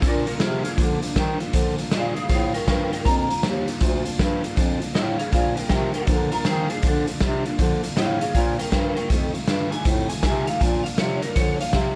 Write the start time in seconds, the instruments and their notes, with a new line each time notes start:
0.01 steel-string acoustic guitar A#2 F3 A#3 D4 F4, bass clarinet A#2, clean electric guitar D4 A#4, kick, closed hi-hat
0.25 bass clarinet A#2, steel-string acoustic guitar A#3 D4 F4, clean electric guitar D4 A#4, closed hi-hat
0.40 bass clarinet C3, steel-string acoustic guitar F3 A#3 D4, clean electric guitar F4 G#4, snare, closed hi-hat
0.44 steel-string acoustic guitar F4
0.63 bass clarinet C3, steel-string acoustic guitar A#3 D4 F4, clean electric guitar F4 G#4, closed hi-hat
0.77 steel-string acoustic guitar A#2 F3 A#3 D4 F4, bass clarinet D3, clean electric guitar D4, kick, closed hi-hat
1.02 bass clarinet D3, steel-string acoustic guitar A#3 D4 F4, closed hi-hat
1.15 bass clarinet D#3, steel-string acoustic guitar F3 A#3 D4 F4, kick, snare, closed hi-hat
1.40 bass clarinet D#3, steel-string acoustic guitar A#3 D4 F4, closed hi-hat
1.53 steel-string acoustic guitar A#2 F3 A#3 D4 F4, bass clarinet D3, kick, closed hi-hat
1.77 bass clarinet D3, steel-string acoustic guitar A#3 D4 F4, closed hi-hat
1.90 bass clarinet A#2, steel-string acoustic guitar F3 A#3 D4 F4, clean electric guitar G#4 F5, snare, closed hi-hat
2.14 bass clarinet A#2, steel-string acoustic guitar A#3 D4 F4, clean electric guitar G#4 F5, closed hi-hat
2.29 bass clarinet A2, steel-string acoustic guitar A#2 F3 A#3 D4 F4, clean electric guitar G#4 F5, kick, snare, closed hi-hat
2.53 bass clarinet A2, steel-string acoustic guitar A#3 D4 F4, clean electric guitar A#4 G5, closed hi-hat
2.66 bass clarinet G2, steel-string acoustic guitar F3 A#3 D4 F4, clean electric guitar A#4 G5, kick, snare, closed hi-hat
2.91 bass clarinet G2, steel-string acoustic guitar A#3 D4 F4, clean electric guitar A#4 G5, closed hi-hat
3.04 bass clarinet F2, steel-string acoustic guitar A#2 F3 A#3 D4 F4, clean electric guitar A#5, kick, closed hi-hat
3.29 bass clarinet F2, steel-string acoustic guitar A#3 D4 F4, closed hi-hat
3.42 bass clarinet D#2, steel-string acoustic guitar F3 A#3 D4 F4, snare, closed hi-hat
3.67 steel-string acoustic guitar A#3 D4 F4, closed hi-hat
3.80 bass clarinet D2, steel-string acoustic guitar A#2 F3 A#3 D4 F4, kick, closed hi-hat
4.04 bass clarinet D2, steel-string acoustic guitar A#3 D4 F4, closed hi-hat
4.18 bass clarinet G2, steel-string acoustic guitar F3 A#3 D4 F4, kick, snare, closed hi-hat
4.42 bass clarinet G2, steel-string acoustic guitar A#3 D4 F4, closed hi-hat
4.56 bass clarinet F2, steel-string acoustic guitar A#2 F3 A#3 D4 F4, kick, closed hi-hat
4.80 bass clarinet F2, steel-string acoustic guitar A#3 D4 F4, closed hi-hat
4.93 bass clarinet A2, steel-string acoustic guitar F3 A#3 D4 F4, clean electric guitar G#4 F5, snare, closed hi-hat
5.18 bass clarinet A2, steel-string acoustic guitar D4 F4, clean electric guitar G#4 F5, closed hi-hat
5.22 steel-string acoustic guitar A#3
5.32 steel-string acoustic guitar A#2 F3 A#3 D4 F4, bass clarinet A#2, clean electric guitar G#4 F5, kick, snare, closed hi-hat
5.56 bass clarinet A#2, steel-string acoustic guitar A#3 D4 F4, clean electric guitar A#4 G5, closed hi-hat
5.69 bass clarinet C3, steel-string acoustic guitar F3 A#3 D4, clean electric guitar A#4 G5, kick, snare, closed hi-hat
5.73 steel-string acoustic guitar F4
5.94 bass clarinet C3, steel-string acoustic guitar A#3 D4 F4, clean electric guitar A#4 G5, closed hi-hat
6.07 steel-string acoustic guitar A#2 F3 A#3 D4 F4, bass clarinet D3, clean electric guitar D4 A#4, kick, closed hi-hat
6.31 bass clarinet D3, clean electric guitar D4 A#4, steel-string acoustic guitar D4 F4, closed hi-hat
6.35 steel-string acoustic guitar A#3
6.45 bass clarinet D#3, steel-string acoustic guitar F3 A#3 D4 F4, clean electric guitar F4 G#4, snare, closed hi-hat
6.69 bass clarinet D#3, steel-string acoustic guitar A#3 D4 F4, clean electric guitar F4 G#4, closed hi-hat
6.82 steel-string acoustic guitar A#2 F3 A#3 D4 F4, bass clarinet D3, clean electric guitar D4, kick, closed hi-hat
7.06 bass clarinet D3, steel-string acoustic guitar A#3 D4 F4, closed hi-hat
7.20 bass clarinet C3, steel-string acoustic guitar F3 A#3 D4 F4, kick, snare, closed hi-hat
7.45 bass clarinet C3, steel-string acoustic guitar A#3 D4 F4, closed hi-hat
7.58 steel-string acoustic guitar A#2 F3 A#3 D4 F4, bass clarinet D3, kick, closed hi-hat
7.83 bass clarinet D3, steel-string acoustic guitar A#3 D4 F4, closed hi-hat
7.96 bass clarinet A2, steel-string acoustic guitar F3 A#3 D4 F4, clean electric guitar G#4 F5, snare, closed hi-hat
8.21 bass clarinet A2, steel-string acoustic guitar A#3 D4 F4, clean electric guitar G#4 F5, closed hi-hat
8.34 bass clarinet A#2, steel-string acoustic guitar A#2 F3 A#3 D4 F4, clean electric guitar G#4 F5, kick, closed hi-hat
8.58 bass clarinet A#2, steel-string acoustic guitar A#3 D4 F4, clean electric guitar A#4 G5, closed hi-hat
8.70 bass clarinet G2, steel-string acoustic guitar F3 A#3, clean electric guitar A#4 G5, kick, snare, closed hi-hat
8.75 steel-string acoustic guitar D4 F4
8.95 bass clarinet G2, steel-string acoustic guitar D4 F4, clean electric guitar A#4 G5, closed hi-hat
8.99 steel-string acoustic guitar A#3
9.10 steel-string acoustic guitar F2 C3 D#3 A3 D#4 F4, bass clarinet F2, kick, closed hi-hat
9.33 bass clarinet F2, steel-string acoustic guitar D#3 A3 D#4 F4, closed hi-hat
9.46 bass clarinet G2, steel-string acoustic guitar D#3 A3 D#4 F4, snare, closed hi-hat
9.70 bass clarinet G2, steel-string acoustic guitar D#3 A3 D#4 F4, clean electric guitar G#5, closed hi-hat
9.85 steel-string acoustic guitar F2 C3 D#3 A3 D#4 F4, bass clarinet A2, kick, closed hi-hat
10.09 bass clarinet A2, steel-string acoustic guitar A3 D#4 F4, clean electric guitar G#5, closed hi-hat
10.13 steel-string acoustic guitar D#3
10.22 bass clarinet C3, steel-string acoustic guitar D#3 A3 D#4 F4, clean electric guitar G#5, kick, snare, closed hi-hat
10.47 steel-string acoustic guitar D#3 A3 D#4 F4, clean electric guitar F5, closed hi-hat
10.59 steel-string acoustic guitar A#2 F3 A#3 D4 F4, bass clarinet A#2, clean electric guitar G#5, kick, closed hi-hat
10.84 bass clarinet A#2, steel-string acoustic guitar D4 F4, clean electric guitar F5, closed hi-hat
10.88 steel-string acoustic guitar A#3
10.98 bass clarinet C3, steel-string acoustic guitar F3 A#3 D4 F4, clean electric guitar C#5, snare, closed hi-hat
11.22 bass clarinet C3, steel-string acoustic guitar D4 F4, clean electric guitar A#4, closed hi-hat
11.27 steel-string acoustic guitar A#3
11.35 steel-string acoustic guitar A#2 F3 A#3 D4 F4, bass clarinet D3, clean electric guitar C#5, kick, snare, closed hi-hat
11.60 bass clarinet D3, steel-string acoustic guitar A#3 D4 F4, clean electric guitar F5, closed hi-hat
11.73 bass clarinet C3, steel-string acoustic guitar F3 A#3 D4 F4, kick, snare, closed hi-hat